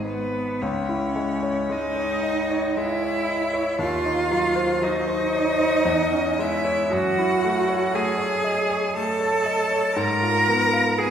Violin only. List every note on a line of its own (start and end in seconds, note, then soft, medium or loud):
0.05 0.64 B4 medium
0.62 1.74 C#5 medium
1.72 2.79 D#5 medium
2.77 3.80 E5 medium
3.81 4.84 F5 medium
4.83 6.42 D#5 loud
6.41 6.95 E5 loud
6.93 7.97 F#5 loud
7.95 8.95 G#5 loud
8.97 10.00 A5 loud
9.98 11.02 A#5 loud
11.01 11.10 G#5 loud